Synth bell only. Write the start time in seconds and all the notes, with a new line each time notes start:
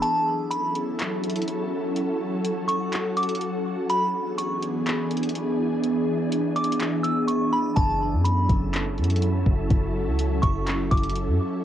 0.02 A5
0.50 B5
2.68 C#6
3.17 D6
3.90 B5
4.38 C#6
6.56 D6
7.03 E6
7.28 C#6
7.53 B5
7.76 A5
8.25 B5
10.42 C#6
10.91 D6